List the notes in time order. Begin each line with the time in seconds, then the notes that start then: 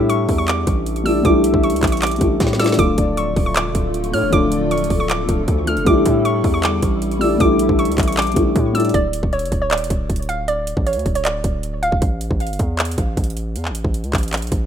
Already playing: A2 G3 A3 D4 E4 E5
0.09 C#6, closed hi-hat
0.29 E2, kick, open hi-hat
0.38 C#6
0.48 D6, clap, closed hi-hat
0.67 A1, kick, closed hi-hat
0.86 closed hi-hat
0.96 closed hi-hat
1.04 G3 A3 D4 D5 E6, open hi-hat
1.08 E4
1.23 A1 G3 A3 D4 D6, kick, closed hi-hat
1.27 E4
1.44 A#1 E5, closed hi-hat
1.54 A1, kick
1.63 C#6, closed hi-hat
1.70 C#2, closed hi-hat
1.76 closed hi-hat
1.83 A1, kick, clap, closed hi-hat
1.87 closed hi-hat
1.92 C#6, closed hi-hat
1.97 closed hi-hat
2.02 D6, clap, closed hi-hat
2.07 closed hi-hat
2.11 A#1, closed hi-hat
2.16 G3 A3, closed hi-hat
2.21 A1 D4 E4, kick, closed hi-hat
2.40 A2, kick, snare, closed hi-hat
2.47 snare
2.53 snare
2.58 G3 A3 D4 D5 E6, snare, closed hi-hat
2.62 E4, closed hi-hat
2.66 snare, closed hi-hat
2.72 F3, snare, closed hi-hat
2.78 D1 D3 A3 D4 F4 A4 D6, kick, closed hi-hat
2.98 D1 D5, kick, closed hi-hat
3.17 C#6, closed hi-hat
3.36 D1, kick, open hi-hat
3.46 C#6
3.56 D6, clap, closed hi-hat
3.65 E1
3.75 D1, kick, closed hi-hat
3.94 closed hi-hat
4.04 closed hi-hat
4.11 A2 F3 A3 D4 C#5 F6, open hi-hat
4.16 F4
4.23 D1
4.30 D1 F3 A3 D4 D6, kick, closed hi-hat
4.35 F4
4.51 D5, closed hi-hat
4.71 C#6, closed hi-hat
4.78 closed hi-hat
4.84 closed hi-hat
4.90 D1, kick, open hi-hat
5.00 C#6
5.09 D6, clap, closed hi-hat
5.26 D1 F3 A3 D4, kick, closed hi-hat
5.31 F4
5.48 D2, kick, closed hi-hat
5.65 F3 A3 D4 F6, closed hi-hat
5.69 F4
5.77 F1, closed hi-hat
5.85 A1 G3 A3 D4 E4 D6, kick, closed hi-hat
5.89 E4
6.06 A2 E5, kick, closed hi-hat
6.25 C#6, closed hi-hat
6.44 E2, kick, open hi-hat
6.54 C#6
6.63 D6, clap, closed hi-hat
6.82 A1, kick, closed hi-hat
7.02 closed hi-hat
7.11 closed hi-hat
7.19 G3 A3 D4 D5 E6, open hi-hat
7.23 E4
7.38 A1 G3 A3 D4 D6, kick, closed hi-hat
7.43 E4
7.59 A#1 E5, closed hi-hat
7.69 A1, kick
7.79 C#6, closed hi-hat
7.85 C#2, closed hi-hat
7.92 closed hi-hat
7.98 A1, kick, clap, closed hi-hat
8.03 closed hi-hat
8.08 C#6, closed hi-hat
8.12 closed hi-hat
8.17 D6, clap, closed hi-hat
8.22 closed hi-hat
8.27 A#1, closed hi-hat
8.32 G3 A3, closed hi-hat
8.36 A1 D4 E4, kick, closed hi-hat
8.56 A2, kick, closed hi-hat
8.73 G3 A3 D4 D5 E6, closed hi-hat
8.77 E4, closed hi-hat
8.85 closed hi-hat
8.89 closed hi-hat
8.94 D1 D5, kick, closed hi-hat
9.13 closed hi-hat
9.23 D1, kick
9.33 C#5, closed hi-hat
9.39 F1, closed hi-hat
9.45 closed hi-hat
9.52 D1, kick, closed hi-hat
9.62 C#5
9.71 D5, clap, closed hi-hat
9.78 E1, closed hi-hat
9.84 closed hi-hat
9.90 D1, kick, closed hi-hat
10.10 D1, kick, closed hi-hat
10.16 closed hi-hat
10.22 closed hi-hat
10.29 F5, closed hi-hat
10.48 D5, closed hi-hat
10.67 closed hi-hat
10.77 A1, kick
10.87 C#5, closed hi-hat
10.93 D2, closed hi-hat
10.99 closed hi-hat
11.06 D1, kick, closed hi-hat
11.15 C#5, closed hi-hat
11.25 D5, clap, closed hi-hat
11.44 D1, kick, closed hi-hat
11.63 closed hi-hat
11.83 F5, closed hi-hat
11.92 D1, kick
12.02 A1, kick, closed hi-hat
12.21 closed hi-hat
12.31 A1, kick
12.40 closed hi-hat
12.47 G1, closed hi-hat
12.53 closed hi-hat
12.59 E2, kick, closed hi-hat
12.79 clap, closed hi-hat
12.85 closed hi-hat
12.92 closed hi-hat
12.98 A1, kick, closed hi-hat
13.17 A1, kick, closed hi-hat
13.24 closed hi-hat
13.30 closed hi-hat
13.37 closed hi-hat
13.56 E2, closed hi-hat
13.65 clap
13.70 A1
13.75 closed hi-hat
13.84 A1, kick
13.94 closed hi-hat
14.04 C#2, closed hi-hat
14.13 A1, kick, clap, closed hi-hat
14.18 closed hi-hat
14.23 closed hi-hat
14.28 closed hi-hat
14.33 clap, closed hi-hat
14.37 closed hi-hat
14.42 A#1, closed hi-hat
14.47 closed hi-hat
14.52 A1, kick, closed hi-hat